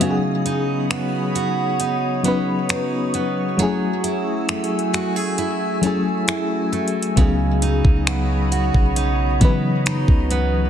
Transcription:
Already playing: steel-string acoustic guitar G#4, fm electric piano C#5 F#5, ambient pad D#6
0.00 steel-string acoustic guitar C#3, fm electric piano F#3 B3 C#4 D#4, ambient pad F#4 C#5 B5, closed hi-hat
0.04 fm electric piano F#4
0.11 fm electric piano G#4
0.46 steel-string acoustic guitar D#4, closed hi-hat
0.90 steel-string acoustic guitar B3, finger snap, closed hi-hat
1.35 steel-string acoustic guitar F#4, closed hi-hat
1.80 steel-string acoustic guitar D#4, ambient pad C#6, closed hi-hat
2.23 fm electric piano F#3 B3 C#4 D#4, steel-string acoustic guitar B3, closed hi-hat
2.28 fm electric piano B4
2.69 steel-string acoustic guitar D#4, finger snap, closed hi-hat
3.14 steel-string acoustic guitar B3, closed hi-hat
3.57 fm electric piano F#3 A3 C#4 E4, steel-string acoustic guitar F#3, ambient pad A3 G#5 E6, closed hi-hat
3.62 fm electric piano G#4
4.04 steel-string acoustic guitar E4, closed hi-hat
4.49 steel-string acoustic guitar A3, finger snap, closed hi-hat
4.64 closed hi-hat
4.79 closed hi-hat
4.93 steel-string acoustic guitar F#4, finger snap, closed hi-hat
5.16 steel-string acoustic guitar G#4
5.38 steel-string acoustic guitar E4, closed hi-hat
5.81 fm electric piano F#3 A3 C#4 E4, steel-string acoustic guitar A3, closed hi-hat
5.87 fm electric piano G#4
6.28 steel-string acoustic guitar E4, finger snap, closed hi-hat
6.72 steel-string acoustic guitar A3, closed hi-hat
6.88 closed hi-hat
7.03 closed hi-hat
7.16 808-style bass C#2, steel-string acoustic guitar C#3, fm electric piano F#3 B3 C#4 D#4, ambient pad F#4 C#5 B5 D#6, kick, closed hi-hat
7.21 fm electric piano G#4
7.62 steel-string acoustic guitar D#4, closed hi-hat
7.85 808-style bass C#2, kick
8.07 steel-string acoustic guitar B3, finger snap, closed hi-hat
8.52 steel-string acoustic guitar F#4, closed hi-hat
8.74 808-style bass B1, kick
8.96 steel-string acoustic guitar D#4, closed hi-hat
9.40 808-style bass C#3, fm electric piano E3 B3 C#4 D#4, steel-string acoustic guitar B3, kick, closed hi-hat
9.45 fm electric piano F#3 B4
9.86 steel-string acoustic guitar D#4, finger snap, closed hi-hat
10.08 808-style bass C#2, kick
10.31 steel-string acoustic guitar B3, closed hi-hat

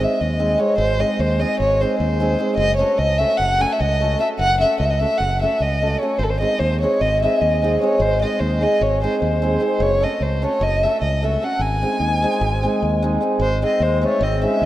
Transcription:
0.00 hammered dulcimer G#3 C4 D#4 G#4, violin E5
0.21 fingered electric bass D#2, violin D#5
0.39 hammered dulcimer G#3 C4 D#4 G#4
0.58 hammered dulcimer G#3 C4 D#4 G#4, violin C#5
0.78 fingered electric bass G#1, violin C5
0.98 hammered dulcimer G#3 C4 D#4 G#4, violin D#5
1.19 fingered electric bass D#2, violin C5
1.39 hammered dulcimer G#3 C4 D#4 G#4, violin D#5
1.60 fingered electric bass G#1, violin C#5
1.81 hammered dulcimer G#3 C4 D#4 G#4, violin C5
1.99 fingered electric bass D#2, violin C5
2.20 hammered dulcimer G#3 C4 D#4 G#4
2.39 hammered dulcimer G#3 C4 D#4 G#4
2.57 fingered electric bass F#1, violin D#5
2.76 hammered dulcimer A3 C#4 F#4, violin C#5
2.81 hammered dulcimer A4
2.98 fingered electric bass C#2, violin D#5
3.18 hammered dulcimer A3 C#4 F#4 A4, violin E5
3.37 fingered electric bass F#1, violin F#5
3.60 hammered dulcimer A3 C#4 F#4 A4, violin G#5
3.72 violin E5
3.80 fingered electric bass C#2, violin D#5
4.01 hammered dulcimer A3 C#4 F#4 A4
4.18 hammered dulcimer A3 C#4 F#4 A4, violin E5
4.39 fingered electric bass F#1, violin F#5
4.59 hammered dulcimer A3 C#4 F#4 A4, violin E5
4.80 fingered electric bass C#2, violin D#5
4.85 violin E5
4.90 violin D#5
5.00 hammered dulcimer A3 C#4 F#4 A4, violin E5
5.18 fingered electric bass F#1, violin F#5
5.42 hammered dulcimer A3 C#4 F#4 A4, violin E5
5.60 fingered electric bass C#2, violin D#5
5.82 hammered dulcimer A3 C#4 F#4 A4
6.00 hammered dulcimer A3 C#4 F#4 A4, violin C#5
6.18 fingered electric bass G#1, violin C5
6.23 violin A4
6.30 violin C5
6.40 hammered dulcimer G#3 C4 D#4 G#4, violin D#5
6.59 fingered electric bass D#2, violin C5
6.81 hammered dulcimer G#3 C4 D#4 G#4, violin C#5
7.01 fingered electric bass G#1, violin D#5
7.22 hammered dulcimer G#3 C4 D#4 G#4, violin E5
7.41 fingered electric bass D#2, violin D#5
7.62 hammered dulcimer G#3 C4 D#4 G#4
7.81 hammered dulcimer G#3 C4 D#4 G#4, violin C#5
8.00 fingered electric bass G#1, violin C5
8.21 hammered dulcimer G#3 C4 D#4 G#4, violin D#5
8.40 fingered electric bass D#2, violin C5
8.61 hammered dulcimer G#3 C4 D#4 G#4, violin D#5
8.81 fingered electric bass G#1, violin C#5
9.02 hammered dulcimer G#3 C4 D#4 G#4, violin C5
9.22 fingered electric bass D#2, violin C5
9.42 hammered dulcimer G#3 C4 D#4 G#4
9.60 hammered dulcimer G#3 C4 D#4 G#4
9.80 fingered electric bass F#1, violin C#5
10.00 hammered dulcimer A3 C#4 F#4 A4, violin D#5
10.21 fingered electric bass C#2, violin C5
10.42 hammered dulcimer A3 C#4 F#4 A4, violin C#5
10.61 fingered electric bass F#1, violin D#5
10.83 hammered dulcimer A3 C#4 F#4 A4, violin E5
11.02 fingered electric bass C#2, violin D#5
11.22 hammered dulcimer A3 C#4 F#4 A4, violin E5
11.42 hammered dulcimer A3 C#4 F#4 A4, violin F#5
11.59 fingered electric bass G#1, violin G#5
11.82 hammered dulcimer G#3 C4 D#4 G#4
12.00 fingered electric bass D#2
12.22 hammered dulcimer G#3 C4 D#4 G#4
12.41 fingered electric bass G#1
12.63 hammered dulcimer G#3 C4 D#4 G#4
12.82 fingered electric bass D#2
13.02 hammered dulcimer G#3 C4 D#4 G#4
13.21 hammered dulcimer G#3 C4 D#4 G#4
13.39 fingered electric bass G#1, clarinet G#3, violin C5
13.62 hammered dulcimer G#3 C4 D#4 G#4, clarinet C4, violin D#5
13.80 fingered electric bass D#2, clarinet G#3, violin C5
14.01 hammered dulcimer G#3 C4 D#4 G#4, clarinet A3, violin C#5
14.21 fingered electric bass G#1, clarinet C4, violin D#5
14.42 hammered dulcimer G#3 C4 D#4 G#4, clarinet C#4, violin E5
14.62 fingered electric bass D#2

